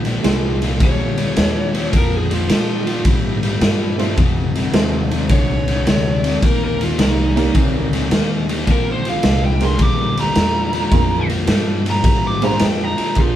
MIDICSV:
0, 0, Header, 1, 7, 480
1, 0, Start_track
1, 0, Tempo, 561798
1, 1649, Time_signature, 4, 2, 24, 8
1, 11414, End_track
2, 0, Start_track
2, 0, Title_t, "Lead electric guitar"
2, 0, Program_c, 0, 29
2, 718, Note_on_c, 0, 73, 100
2, 1635, Note_off_c, 0, 73, 0
2, 1687, Note_on_c, 0, 70, 89
2, 1848, Note_off_c, 0, 70, 0
2, 1848, Note_on_c, 0, 68, 81
2, 1995, Note_off_c, 0, 68, 0
2, 1995, Note_on_c, 0, 65, 84
2, 2138, Note_off_c, 0, 65, 0
2, 2159, Note_on_c, 0, 65, 104
2, 2610, Note_off_c, 0, 65, 0
2, 4546, Note_on_c, 0, 73, 111
2, 5469, Note_off_c, 0, 73, 0
2, 5514, Note_on_c, 0, 70, 87
2, 5658, Note_off_c, 0, 70, 0
2, 5676, Note_on_c, 0, 70, 91
2, 5819, Note_off_c, 0, 70, 0
2, 5837, Note_on_c, 0, 65, 79
2, 5979, Note_off_c, 0, 65, 0
2, 5998, Note_on_c, 0, 63, 104
2, 6450, Note_off_c, 0, 63, 0
2, 7448, Note_on_c, 0, 70, 91
2, 7614, Note_off_c, 0, 70, 0
2, 7614, Note_on_c, 0, 72, 89
2, 7748, Note_off_c, 0, 72, 0
2, 7773, Note_on_c, 0, 77, 90
2, 8063, Note_off_c, 0, 77, 0
2, 8081, Note_on_c, 0, 79, 94
2, 8222, Note_off_c, 0, 79, 0
2, 8244, Note_on_c, 0, 84, 94
2, 8383, Note_off_c, 0, 84, 0
2, 8399, Note_on_c, 0, 86, 96
2, 8696, Note_off_c, 0, 86, 0
2, 8720, Note_on_c, 0, 82, 112
2, 9638, Note_off_c, 0, 82, 0
2, 10178, Note_on_c, 0, 82, 96
2, 10467, Note_off_c, 0, 82, 0
2, 10488, Note_on_c, 0, 86, 88
2, 10626, Note_off_c, 0, 86, 0
2, 10637, Note_on_c, 0, 82, 99
2, 10804, Note_off_c, 0, 82, 0
2, 10804, Note_on_c, 0, 79, 80
2, 10967, Note_off_c, 0, 79, 0
2, 10967, Note_on_c, 0, 82, 100
2, 11262, Note_off_c, 0, 82, 0
2, 11289, Note_on_c, 0, 65, 68
2, 11414, Note_off_c, 0, 65, 0
2, 11414, End_track
3, 0, Start_track
3, 0, Title_t, "Honky-tonk piano"
3, 0, Program_c, 1, 3
3, 195, Note_on_c, 1, 56, 60
3, 195, Note_on_c, 1, 58, 60
3, 199, Note_on_c, 1, 62, 59
3, 200, Note_on_c, 1, 65, 55
3, 201, Note_on_c, 1, 68, 66
3, 939, Note_off_c, 1, 56, 0
3, 939, Note_off_c, 1, 58, 0
3, 941, Note_off_c, 1, 62, 0
3, 942, Note_off_c, 1, 65, 0
3, 942, Note_off_c, 1, 68, 0
3, 3399, Note_on_c, 1, 57, 79
3, 3400, Note_on_c, 1, 60, 63
3, 3406, Note_on_c, 1, 63, 70
3, 3407, Note_on_c, 1, 65, 65
3, 3408, Note_on_c, 1, 69, 81
3, 3547, Note_off_c, 1, 57, 0
3, 3548, Note_off_c, 1, 60, 0
3, 3551, Note_off_c, 1, 63, 0
3, 3551, Note_off_c, 1, 65, 0
3, 3552, Note_off_c, 1, 69, 0
3, 4041, Note_on_c, 1, 65, 66
3, 4043, Note_on_c, 1, 60, 62
3, 4044, Note_on_c, 1, 57, 65
3, 4044, Note_on_c, 1, 63, 60
3, 4047, Note_on_c, 1, 69, 78
3, 4782, Note_off_c, 1, 65, 0
3, 4783, Note_off_c, 1, 60, 0
3, 4784, Note_off_c, 1, 57, 0
3, 4784, Note_off_c, 1, 63, 0
3, 4785, Note_off_c, 1, 69, 0
3, 6285, Note_on_c, 1, 58, 77
3, 6287, Note_on_c, 1, 61, 69
3, 6287, Note_on_c, 1, 63, 74
3, 6292, Note_on_c, 1, 67, 68
3, 6294, Note_on_c, 1, 70, 78
3, 6895, Note_off_c, 1, 58, 0
3, 6896, Note_off_c, 1, 61, 0
3, 6896, Note_off_c, 1, 63, 0
3, 6898, Note_off_c, 1, 67, 0
3, 6900, Note_off_c, 1, 70, 0
3, 8210, Note_on_c, 1, 58, 73
3, 8215, Note_on_c, 1, 62, 68
3, 8215, Note_on_c, 1, 70, 81
3, 8216, Note_on_c, 1, 65, 71
3, 8217, Note_on_c, 1, 68, 70
3, 8818, Note_off_c, 1, 58, 0
3, 8821, Note_off_c, 1, 62, 0
3, 8821, Note_off_c, 1, 65, 0
3, 8821, Note_off_c, 1, 70, 0
3, 8822, Note_off_c, 1, 68, 0
3, 9325, Note_on_c, 1, 62, 67
3, 9327, Note_on_c, 1, 58, 70
3, 9327, Note_on_c, 1, 65, 70
3, 9330, Note_on_c, 1, 68, 63
3, 9331, Note_on_c, 1, 70, 83
3, 9618, Note_off_c, 1, 62, 0
3, 9619, Note_off_c, 1, 58, 0
3, 9619, Note_off_c, 1, 65, 0
3, 9620, Note_off_c, 1, 68, 0
3, 9621, Note_off_c, 1, 70, 0
3, 10609, Note_on_c, 1, 58, 93
3, 10610, Note_on_c, 1, 62, 80
3, 10614, Note_on_c, 1, 65, 79
3, 10614, Note_on_c, 1, 68, 82
3, 10617, Note_on_c, 1, 72, 96
3, 10754, Note_off_c, 1, 58, 0
3, 10755, Note_off_c, 1, 62, 0
3, 10757, Note_off_c, 1, 65, 0
3, 10757, Note_off_c, 1, 68, 0
3, 10758, Note_off_c, 1, 72, 0
3, 11254, Note_on_c, 1, 58, 57
3, 11256, Note_on_c, 1, 62, 51
3, 11257, Note_on_c, 1, 68, 53
3, 11259, Note_on_c, 1, 65, 54
3, 11262, Note_on_c, 1, 70, 62
3, 11414, Note_off_c, 1, 58, 0
3, 11414, Note_off_c, 1, 62, 0
3, 11414, Note_off_c, 1, 65, 0
3, 11414, Note_off_c, 1, 68, 0
3, 11414, Note_off_c, 1, 70, 0
3, 11414, End_track
4, 0, Start_track
4, 0, Title_t, "Overdriven electric guitar"
4, 0, Program_c, 2, 29
4, 52, Note_on_c, 2, 46, 82
4, 55, Note_on_c, 2, 53, 85
4, 193, Note_off_c, 2, 46, 0
4, 195, Note_off_c, 2, 53, 0
4, 209, Note_on_c, 2, 46, 76
4, 209, Note_on_c, 2, 53, 89
4, 498, Note_off_c, 2, 46, 0
4, 498, Note_off_c, 2, 53, 0
4, 530, Note_on_c, 2, 46, 76
4, 541, Note_on_c, 2, 53, 96
4, 673, Note_off_c, 2, 46, 0
4, 678, Note_off_c, 2, 53, 0
4, 692, Note_on_c, 2, 46, 79
4, 698, Note_on_c, 2, 55, 94
4, 980, Note_off_c, 2, 46, 0
4, 983, Note_off_c, 2, 55, 0
4, 1006, Note_on_c, 2, 46, 76
4, 1010, Note_on_c, 2, 55, 88
4, 1151, Note_off_c, 2, 46, 0
4, 1153, Note_off_c, 2, 55, 0
4, 1165, Note_on_c, 2, 46, 89
4, 1168, Note_on_c, 2, 53, 97
4, 1457, Note_off_c, 2, 46, 0
4, 1458, Note_off_c, 2, 53, 0
4, 1484, Note_on_c, 2, 46, 79
4, 1493, Note_on_c, 2, 53, 88
4, 1630, Note_off_c, 2, 46, 0
4, 1634, Note_off_c, 2, 53, 0
4, 1639, Note_on_c, 2, 46, 93
4, 1645, Note_on_c, 2, 53, 99
4, 1933, Note_off_c, 2, 46, 0
4, 1936, Note_off_c, 2, 53, 0
4, 1968, Note_on_c, 2, 46, 78
4, 1972, Note_on_c, 2, 53, 80
4, 2112, Note_off_c, 2, 46, 0
4, 2114, Note_off_c, 2, 53, 0
4, 2123, Note_on_c, 2, 46, 77
4, 2125, Note_on_c, 2, 53, 91
4, 2416, Note_off_c, 2, 46, 0
4, 2416, Note_off_c, 2, 53, 0
4, 2442, Note_on_c, 2, 46, 83
4, 2450, Note_on_c, 2, 53, 81
4, 2589, Note_off_c, 2, 46, 0
4, 2593, Note_off_c, 2, 53, 0
4, 2607, Note_on_c, 2, 46, 85
4, 2612, Note_on_c, 2, 55, 83
4, 2897, Note_off_c, 2, 46, 0
4, 2900, Note_off_c, 2, 55, 0
4, 2928, Note_on_c, 2, 55, 89
4, 2930, Note_on_c, 2, 46, 72
4, 3072, Note_off_c, 2, 55, 0
4, 3073, Note_off_c, 2, 46, 0
4, 3087, Note_on_c, 2, 53, 96
4, 3088, Note_on_c, 2, 46, 94
4, 3378, Note_off_c, 2, 46, 0
4, 3378, Note_off_c, 2, 53, 0
4, 3409, Note_on_c, 2, 46, 78
4, 3412, Note_on_c, 2, 53, 83
4, 3552, Note_off_c, 2, 46, 0
4, 3554, Note_off_c, 2, 53, 0
4, 3565, Note_on_c, 2, 41, 88
4, 3568, Note_on_c, 2, 48, 93
4, 3856, Note_off_c, 2, 41, 0
4, 3858, Note_off_c, 2, 48, 0
4, 3891, Note_on_c, 2, 41, 80
4, 3894, Note_on_c, 2, 48, 82
4, 4034, Note_off_c, 2, 41, 0
4, 4035, Note_off_c, 2, 48, 0
4, 4052, Note_on_c, 2, 41, 83
4, 4055, Note_on_c, 2, 48, 90
4, 4340, Note_off_c, 2, 41, 0
4, 4342, Note_off_c, 2, 48, 0
4, 4370, Note_on_c, 2, 41, 78
4, 4372, Note_on_c, 2, 48, 85
4, 4513, Note_off_c, 2, 41, 0
4, 4514, Note_off_c, 2, 48, 0
4, 4525, Note_on_c, 2, 41, 76
4, 4531, Note_on_c, 2, 50, 93
4, 4817, Note_off_c, 2, 41, 0
4, 4819, Note_off_c, 2, 50, 0
4, 4848, Note_on_c, 2, 41, 73
4, 4852, Note_on_c, 2, 50, 88
4, 4992, Note_off_c, 2, 41, 0
4, 4994, Note_off_c, 2, 50, 0
4, 5003, Note_on_c, 2, 41, 82
4, 5004, Note_on_c, 2, 48, 106
4, 5295, Note_off_c, 2, 41, 0
4, 5296, Note_off_c, 2, 48, 0
4, 5329, Note_on_c, 2, 41, 74
4, 5333, Note_on_c, 2, 48, 93
4, 5473, Note_off_c, 2, 41, 0
4, 5474, Note_off_c, 2, 48, 0
4, 5487, Note_on_c, 2, 51, 95
4, 5492, Note_on_c, 2, 58, 98
4, 5778, Note_off_c, 2, 51, 0
4, 5780, Note_off_c, 2, 58, 0
4, 5817, Note_on_c, 2, 51, 75
4, 5822, Note_on_c, 2, 58, 85
4, 5957, Note_off_c, 2, 51, 0
4, 5959, Note_off_c, 2, 58, 0
4, 5971, Note_on_c, 2, 51, 78
4, 5971, Note_on_c, 2, 58, 87
4, 6260, Note_off_c, 2, 51, 0
4, 6260, Note_off_c, 2, 58, 0
4, 6288, Note_on_c, 2, 51, 81
4, 6295, Note_on_c, 2, 58, 89
4, 6432, Note_off_c, 2, 51, 0
4, 6436, Note_off_c, 2, 58, 0
4, 6447, Note_on_c, 2, 51, 83
4, 6450, Note_on_c, 2, 60, 96
4, 6738, Note_off_c, 2, 51, 0
4, 6740, Note_off_c, 2, 60, 0
4, 6776, Note_on_c, 2, 51, 81
4, 6778, Note_on_c, 2, 60, 83
4, 6916, Note_off_c, 2, 51, 0
4, 6917, Note_off_c, 2, 60, 0
4, 6933, Note_on_c, 2, 51, 90
4, 6938, Note_on_c, 2, 58, 102
4, 7221, Note_off_c, 2, 51, 0
4, 7223, Note_off_c, 2, 58, 0
4, 7258, Note_on_c, 2, 51, 80
4, 7262, Note_on_c, 2, 58, 89
4, 7398, Note_off_c, 2, 51, 0
4, 7400, Note_off_c, 2, 58, 0
4, 7409, Note_on_c, 2, 46, 99
4, 7412, Note_on_c, 2, 53, 101
4, 7699, Note_off_c, 2, 46, 0
4, 7701, Note_off_c, 2, 53, 0
4, 7738, Note_on_c, 2, 46, 81
4, 7741, Note_on_c, 2, 53, 91
4, 7878, Note_off_c, 2, 46, 0
4, 7879, Note_off_c, 2, 53, 0
4, 7899, Note_on_c, 2, 46, 84
4, 7904, Note_on_c, 2, 53, 84
4, 8184, Note_off_c, 2, 46, 0
4, 8187, Note_off_c, 2, 53, 0
4, 8211, Note_on_c, 2, 46, 78
4, 8220, Note_on_c, 2, 53, 85
4, 8354, Note_off_c, 2, 46, 0
4, 8359, Note_off_c, 2, 53, 0
4, 8374, Note_on_c, 2, 46, 79
4, 8376, Note_on_c, 2, 55, 90
4, 8662, Note_off_c, 2, 46, 0
4, 8663, Note_off_c, 2, 55, 0
4, 8700, Note_on_c, 2, 46, 81
4, 8702, Note_on_c, 2, 55, 90
4, 8839, Note_off_c, 2, 46, 0
4, 8840, Note_off_c, 2, 55, 0
4, 8860, Note_on_c, 2, 46, 95
4, 8860, Note_on_c, 2, 53, 97
4, 9145, Note_off_c, 2, 46, 0
4, 9145, Note_off_c, 2, 53, 0
4, 9175, Note_on_c, 2, 46, 86
4, 9175, Note_on_c, 2, 53, 97
4, 9316, Note_off_c, 2, 46, 0
4, 9316, Note_off_c, 2, 53, 0
4, 9333, Note_on_c, 2, 46, 90
4, 9334, Note_on_c, 2, 53, 91
4, 9622, Note_off_c, 2, 46, 0
4, 9622, Note_off_c, 2, 53, 0
4, 9652, Note_on_c, 2, 46, 73
4, 9654, Note_on_c, 2, 53, 83
4, 9795, Note_off_c, 2, 46, 0
4, 9796, Note_off_c, 2, 53, 0
4, 9808, Note_on_c, 2, 46, 91
4, 9815, Note_on_c, 2, 53, 92
4, 10100, Note_off_c, 2, 46, 0
4, 10103, Note_off_c, 2, 53, 0
4, 10129, Note_on_c, 2, 46, 77
4, 10133, Note_on_c, 2, 53, 79
4, 10272, Note_off_c, 2, 46, 0
4, 10276, Note_off_c, 2, 53, 0
4, 10283, Note_on_c, 2, 46, 79
4, 10286, Note_on_c, 2, 55, 93
4, 10577, Note_off_c, 2, 46, 0
4, 10579, Note_off_c, 2, 55, 0
4, 10606, Note_on_c, 2, 46, 82
4, 10613, Note_on_c, 2, 55, 86
4, 10753, Note_off_c, 2, 46, 0
4, 10756, Note_off_c, 2, 55, 0
4, 10765, Note_on_c, 2, 53, 103
4, 10766, Note_on_c, 2, 46, 89
4, 11059, Note_off_c, 2, 46, 0
4, 11059, Note_off_c, 2, 53, 0
4, 11082, Note_on_c, 2, 46, 85
4, 11088, Note_on_c, 2, 53, 88
4, 11232, Note_off_c, 2, 46, 0
4, 11234, Note_off_c, 2, 53, 0
4, 11245, Note_on_c, 2, 46, 74
4, 11254, Note_on_c, 2, 53, 81
4, 11414, Note_off_c, 2, 46, 0
4, 11414, Note_off_c, 2, 53, 0
4, 11414, End_track
5, 0, Start_track
5, 0, Title_t, "Upright bass"
5, 0, Program_c, 3, 32
5, 0, Note_on_c, 3, 34, 87
5, 192, Note_off_c, 3, 34, 0
5, 207, Note_on_c, 3, 36, 92
5, 673, Note_off_c, 3, 36, 0
5, 685, Note_on_c, 3, 38, 80
5, 1153, Note_off_c, 3, 38, 0
5, 1172, Note_on_c, 3, 39, 91
5, 1636, Note_off_c, 3, 39, 0
5, 1649, Note_on_c, 3, 41, 94
5, 2114, Note_off_c, 3, 41, 0
5, 2126, Note_on_c, 3, 46, 91
5, 2593, Note_off_c, 3, 46, 0
5, 2606, Note_on_c, 3, 44, 86
5, 3073, Note_off_c, 3, 44, 0
5, 3084, Note_on_c, 3, 43, 85
5, 3552, Note_off_c, 3, 43, 0
5, 3566, Note_on_c, 3, 41, 90
5, 4033, Note_off_c, 3, 41, 0
5, 4041, Note_on_c, 3, 39, 93
5, 4510, Note_off_c, 3, 39, 0
5, 4524, Note_on_c, 3, 36, 80
5, 4992, Note_off_c, 3, 36, 0
5, 5015, Note_on_c, 3, 38, 89
5, 5478, Note_off_c, 3, 38, 0
5, 5488, Note_on_c, 3, 39, 89
5, 5954, Note_off_c, 3, 39, 0
5, 5970, Note_on_c, 3, 36, 90
5, 6435, Note_off_c, 3, 36, 0
5, 6450, Note_on_c, 3, 37, 84
5, 6915, Note_off_c, 3, 37, 0
5, 6925, Note_on_c, 3, 39, 94
5, 7393, Note_off_c, 3, 39, 0
5, 7415, Note_on_c, 3, 34, 86
5, 7878, Note_off_c, 3, 34, 0
5, 7893, Note_on_c, 3, 36, 101
5, 8357, Note_off_c, 3, 36, 0
5, 8365, Note_on_c, 3, 38, 92
5, 8834, Note_off_c, 3, 38, 0
5, 8852, Note_on_c, 3, 40, 99
5, 9317, Note_off_c, 3, 40, 0
5, 9327, Note_on_c, 3, 41, 97
5, 9795, Note_off_c, 3, 41, 0
5, 9803, Note_on_c, 3, 43, 99
5, 10273, Note_off_c, 3, 43, 0
5, 10289, Note_on_c, 3, 44, 86
5, 10757, Note_off_c, 3, 44, 0
5, 10768, Note_on_c, 3, 41, 96
5, 11070, Note_off_c, 3, 41, 0
5, 11246, Note_on_c, 3, 34, 86
5, 11414, Note_off_c, 3, 34, 0
5, 11414, End_track
6, 0, Start_track
6, 0, Title_t, "Muted upright bass strokes"
6, 11093, Note_on_c, 9, 29, 44
6, 11179, Note_off_c, 9, 29, 0
6, 11414, End_track
7, 0, Start_track
7, 0, Title_t, "Drums"
7, 41, Note_on_c, 9, 51, 58
7, 47, Note_on_c, 9, 38, 35
7, 126, Note_off_c, 9, 51, 0
7, 132, Note_off_c, 9, 38, 0
7, 207, Note_on_c, 9, 51, 87
7, 213, Note_on_c, 9, 38, 118
7, 292, Note_off_c, 9, 51, 0
7, 298, Note_off_c, 9, 38, 0
7, 527, Note_on_c, 9, 51, 61
7, 533, Note_on_c, 9, 38, 34
7, 613, Note_off_c, 9, 51, 0
7, 619, Note_off_c, 9, 38, 0
7, 686, Note_on_c, 9, 51, 85
7, 687, Note_on_c, 9, 36, 116
7, 772, Note_off_c, 9, 36, 0
7, 772, Note_off_c, 9, 51, 0
7, 1005, Note_on_c, 9, 51, 60
7, 1011, Note_on_c, 9, 38, 34
7, 1090, Note_off_c, 9, 51, 0
7, 1096, Note_off_c, 9, 38, 0
7, 1166, Note_on_c, 9, 51, 91
7, 1172, Note_on_c, 9, 38, 112
7, 1252, Note_off_c, 9, 51, 0
7, 1258, Note_off_c, 9, 38, 0
7, 1491, Note_on_c, 9, 51, 64
7, 1497, Note_on_c, 9, 38, 33
7, 1577, Note_off_c, 9, 51, 0
7, 1583, Note_off_c, 9, 38, 0
7, 1650, Note_on_c, 9, 36, 112
7, 1650, Note_on_c, 9, 51, 87
7, 1735, Note_off_c, 9, 51, 0
7, 1736, Note_off_c, 9, 36, 0
7, 1973, Note_on_c, 9, 51, 63
7, 1979, Note_on_c, 9, 38, 33
7, 2059, Note_off_c, 9, 51, 0
7, 2065, Note_off_c, 9, 38, 0
7, 2131, Note_on_c, 9, 51, 97
7, 2137, Note_on_c, 9, 38, 114
7, 2217, Note_off_c, 9, 51, 0
7, 2223, Note_off_c, 9, 38, 0
7, 2452, Note_on_c, 9, 51, 66
7, 2458, Note_on_c, 9, 38, 36
7, 2537, Note_off_c, 9, 51, 0
7, 2543, Note_off_c, 9, 38, 0
7, 2603, Note_on_c, 9, 51, 91
7, 2607, Note_on_c, 9, 36, 117
7, 2689, Note_off_c, 9, 51, 0
7, 2692, Note_off_c, 9, 36, 0
7, 2930, Note_on_c, 9, 51, 60
7, 2936, Note_on_c, 9, 38, 35
7, 3016, Note_off_c, 9, 51, 0
7, 3022, Note_off_c, 9, 38, 0
7, 3087, Note_on_c, 9, 51, 83
7, 3093, Note_on_c, 9, 38, 107
7, 3172, Note_off_c, 9, 51, 0
7, 3178, Note_off_c, 9, 38, 0
7, 3412, Note_on_c, 9, 51, 58
7, 3418, Note_on_c, 9, 38, 33
7, 3498, Note_off_c, 9, 51, 0
7, 3504, Note_off_c, 9, 38, 0
7, 3567, Note_on_c, 9, 51, 77
7, 3569, Note_on_c, 9, 36, 121
7, 3652, Note_off_c, 9, 51, 0
7, 3654, Note_off_c, 9, 36, 0
7, 3891, Note_on_c, 9, 51, 59
7, 3897, Note_on_c, 9, 38, 35
7, 3977, Note_off_c, 9, 51, 0
7, 3983, Note_off_c, 9, 38, 0
7, 4045, Note_on_c, 9, 51, 82
7, 4051, Note_on_c, 9, 38, 116
7, 4131, Note_off_c, 9, 51, 0
7, 4137, Note_off_c, 9, 38, 0
7, 4369, Note_on_c, 9, 51, 61
7, 4375, Note_on_c, 9, 38, 35
7, 4454, Note_off_c, 9, 51, 0
7, 4460, Note_off_c, 9, 38, 0
7, 4522, Note_on_c, 9, 51, 88
7, 4525, Note_on_c, 9, 36, 118
7, 4528, Note_on_c, 9, 38, 33
7, 4608, Note_off_c, 9, 51, 0
7, 4611, Note_off_c, 9, 36, 0
7, 4614, Note_off_c, 9, 38, 0
7, 4851, Note_on_c, 9, 51, 58
7, 4857, Note_on_c, 9, 38, 35
7, 4936, Note_off_c, 9, 51, 0
7, 4942, Note_off_c, 9, 38, 0
7, 5013, Note_on_c, 9, 51, 89
7, 5019, Note_on_c, 9, 38, 116
7, 5098, Note_off_c, 9, 51, 0
7, 5104, Note_off_c, 9, 38, 0
7, 5331, Note_on_c, 9, 51, 66
7, 5337, Note_on_c, 9, 38, 34
7, 5417, Note_off_c, 9, 51, 0
7, 5423, Note_off_c, 9, 38, 0
7, 5489, Note_on_c, 9, 36, 118
7, 5489, Note_on_c, 9, 51, 90
7, 5575, Note_off_c, 9, 36, 0
7, 5575, Note_off_c, 9, 51, 0
7, 5816, Note_on_c, 9, 51, 64
7, 5822, Note_on_c, 9, 38, 34
7, 5902, Note_off_c, 9, 51, 0
7, 5907, Note_off_c, 9, 38, 0
7, 5970, Note_on_c, 9, 51, 96
7, 5976, Note_on_c, 9, 38, 112
7, 6055, Note_off_c, 9, 51, 0
7, 6061, Note_off_c, 9, 38, 0
7, 6298, Note_on_c, 9, 51, 65
7, 6304, Note_on_c, 9, 38, 37
7, 6383, Note_off_c, 9, 51, 0
7, 6389, Note_off_c, 9, 38, 0
7, 6449, Note_on_c, 9, 36, 117
7, 6449, Note_on_c, 9, 51, 94
7, 6534, Note_off_c, 9, 51, 0
7, 6535, Note_off_c, 9, 36, 0
7, 6775, Note_on_c, 9, 51, 62
7, 6781, Note_on_c, 9, 38, 34
7, 6860, Note_off_c, 9, 51, 0
7, 6866, Note_off_c, 9, 38, 0
7, 6931, Note_on_c, 9, 51, 92
7, 6937, Note_on_c, 9, 38, 115
7, 7016, Note_off_c, 9, 51, 0
7, 7022, Note_off_c, 9, 38, 0
7, 7255, Note_on_c, 9, 51, 64
7, 7261, Note_on_c, 9, 38, 35
7, 7341, Note_off_c, 9, 51, 0
7, 7347, Note_off_c, 9, 38, 0
7, 7409, Note_on_c, 9, 51, 84
7, 7412, Note_on_c, 9, 36, 112
7, 7415, Note_on_c, 9, 38, 35
7, 7495, Note_off_c, 9, 51, 0
7, 7498, Note_off_c, 9, 36, 0
7, 7501, Note_off_c, 9, 38, 0
7, 7733, Note_on_c, 9, 51, 60
7, 7739, Note_on_c, 9, 38, 35
7, 7818, Note_off_c, 9, 51, 0
7, 7824, Note_off_c, 9, 38, 0
7, 7884, Note_on_c, 9, 51, 90
7, 7890, Note_on_c, 9, 38, 120
7, 7970, Note_off_c, 9, 51, 0
7, 7976, Note_off_c, 9, 38, 0
7, 8207, Note_on_c, 9, 51, 63
7, 8213, Note_on_c, 9, 38, 35
7, 8292, Note_off_c, 9, 51, 0
7, 8298, Note_off_c, 9, 38, 0
7, 8363, Note_on_c, 9, 51, 82
7, 8367, Note_on_c, 9, 36, 116
7, 8448, Note_off_c, 9, 51, 0
7, 8453, Note_off_c, 9, 36, 0
7, 8693, Note_on_c, 9, 51, 58
7, 8699, Note_on_c, 9, 38, 33
7, 8778, Note_off_c, 9, 51, 0
7, 8784, Note_off_c, 9, 38, 0
7, 8847, Note_on_c, 9, 51, 86
7, 8853, Note_on_c, 9, 38, 117
7, 8932, Note_off_c, 9, 51, 0
7, 8938, Note_off_c, 9, 38, 0
7, 9166, Note_on_c, 9, 51, 57
7, 9172, Note_on_c, 9, 38, 35
7, 9252, Note_off_c, 9, 51, 0
7, 9258, Note_off_c, 9, 38, 0
7, 9326, Note_on_c, 9, 51, 85
7, 9327, Note_on_c, 9, 36, 115
7, 9411, Note_off_c, 9, 51, 0
7, 9413, Note_off_c, 9, 36, 0
7, 9650, Note_on_c, 9, 51, 62
7, 9656, Note_on_c, 9, 38, 36
7, 9736, Note_off_c, 9, 51, 0
7, 9742, Note_off_c, 9, 38, 0
7, 9803, Note_on_c, 9, 51, 93
7, 9809, Note_on_c, 9, 38, 127
7, 9888, Note_off_c, 9, 51, 0
7, 9894, Note_off_c, 9, 38, 0
7, 10133, Note_on_c, 9, 51, 73
7, 10139, Note_on_c, 9, 38, 35
7, 10219, Note_off_c, 9, 51, 0
7, 10225, Note_off_c, 9, 38, 0
7, 10286, Note_on_c, 9, 51, 97
7, 10287, Note_on_c, 9, 36, 125
7, 10371, Note_off_c, 9, 51, 0
7, 10372, Note_off_c, 9, 36, 0
7, 10611, Note_on_c, 9, 51, 66
7, 10617, Note_on_c, 9, 38, 33
7, 10696, Note_off_c, 9, 51, 0
7, 10702, Note_off_c, 9, 38, 0
7, 10761, Note_on_c, 9, 51, 95
7, 10767, Note_on_c, 9, 38, 114
7, 10846, Note_off_c, 9, 51, 0
7, 10852, Note_off_c, 9, 38, 0
7, 11089, Note_on_c, 9, 51, 60
7, 11095, Note_on_c, 9, 38, 33
7, 11175, Note_off_c, 9, 51, 0
7, 11181, Note_off_c, 9, 38, 0
7, 11237, Note_on_c, 9, 51, 80
7, 11243, Note_on_c, 9, 38, 29
7, 11248, Note_on_c, 9, 36, 105
7, 11322, Note_off_c, 9, 51, 0
7, 11328, Note_off_c, 9, 38, 0
7, 11334, Note_off_c, 9, 36, 0
7, 11414, End_track
0, 0, End_of_file